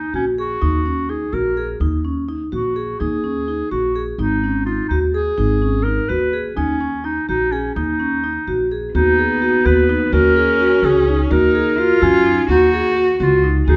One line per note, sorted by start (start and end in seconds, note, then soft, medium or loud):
0.00 0.13 D#4 medium
0.14 0.54 A#1 medium
0.14 0.26 C#4 medium
0.14 0.32 F#4 medium
0.38 1.11 F#4 medium
0.38 0.56 G#4 medium
0.62 1.22 D#2 medium
0.62 0.79 D#4 medium
0.86 1.03 C#4 medium
1.09 1.27 D#4 medium
1.09 1.35 G#4 medium
1.33 1.73 A#1 medium
1.33 1.51 F#4 medium
1.33 1.69 A#4 medium
1.57 1.75 G#4 medium
1.80 2.41 D#2 medium
1.80 1.99 D#4 medium
2.05 2.22 C#4 medium
2.29 2.46 D#4 medium
2.52 2.93 A#1 medium
2.52 2.70 F#4 medium
2.52 3.01 F#4 medium
2.76 2.94 G#4 medium
2.99 3.61 D#2 medium
2.99 3.18 D#4 medium
2.99 3.70 G#4 medium
3.24 3.41 C#4 soft
3.48 3.65 D#4 medium
3.71 4.12 A#1 medium
3.71 4.04 F#4 medium
3.71 3.89 F#4 medium
3.95 4.13 G#4 medium
4.18 4.79 G#1 medium
4.18 4.63 D#4 medium
4.18 4.37 D#4 medium
4.43 4.61 C#4 medium
4.65 4.84 D#4 medium
4.65 4.88 F4 medium
4.88 5.30 D#2 medium
4.88 5.00 D#4 medium
4.88 5.08 F#4 medium
5.12 5.85 G#4 medium
5.12 5.32 G#4 medium
5.38 5.98 G#1 medium
5.38 5.55 D#4 medium
5.62 5.79 C#4 medium
5.83 6.03 D#4 medium
5.83 6.11 A#4 medium
6.09 6.50 D#2 medium
6.09 6.27 F#4 medium
6.09 6.45 B4 medium
6.33 6.51 G#4 medium
6.56 7.17 D#2 medium
6.56 7.06 C#4 medium
6.56 6.74 D#4 medium
6.81 6.98 C#4 medium
7.04 7.22 D#4 medium
7.04 7.28 D#4 medium
7.29 7.69 A#1 medium
7.29 7.53 D#4 medium
7.29 7.46 F#4 medium
7.52 7.74 C#4 medium
7.52 7.70 G#4 medium
7.75 8.36 D#2 medium
7.75 8.66 D#4 medium
7.75 7.94 D#4 medium
8.00 8.17 C#4 medium
8.24 8.41 D#4 medium
8.47 8.87 A#1 medium
8.47 8.65 F#4 medium
8.71 8.89 G#4 medium
8.93 9.54 D#2 medium
8.93 10.14 B3 medium
8.93 9.67 D#4 medium
8.93 9.12 F#4 medium
9.19 9.36 G#4 medium
9.42 9.59 F#4 medium
9.65 10.05 D#2 medium
9.65 9.83 F#4 medium
9.65 10.13 B4 medium
9.89 10.07 D#4 medium
10.12 10.72 D#2 medium
10.12 11.32 C#4 medium
10.12 10.30 F#4 medium
10.12 10.87 A#4 medium
10.36 10.54 G#4 medium
10.61 10.78 F#4 medium
10.82 11.23 C#2 medium
10.82 11.01 F#4 medium
10.82 11.20 G#4 medium
11.08 11.25 D#4 medium
11.31 11.91 D#2 medium
11.31 11.80 D#4 medium
11.31 11.48 F#4 medium
11.31 12.04 A#4 medium
11.55 11.72 G#4 medium
11.78 12.49 F4 loud
11.78 11.96 F#4 medium
12.02 12.42 F#2 medium
12.02 12.50 C#4 medium
12.02 12.19 F#4 medium
12.26 12.43 D#4 medium
12.48 13.08 D#2 medium
12.48 12.91 D#4 medium
12.48 12.67 F#4 medium
12.48 13.40 F#4 medium
12.73 12.91 G#4 medium
12.97 13.14 F#4 medium
13.20 13.60 C#2 medium
13.20 13.54 F4 medium
13.20 13.37 F#4 medium
13.44 13.61 D#4 medium
13.67 13.77 D#2 medium
13.67 13.77 D#4 medium
13.67 13.77 F#4 medium
13.67 13.77 G#4 medium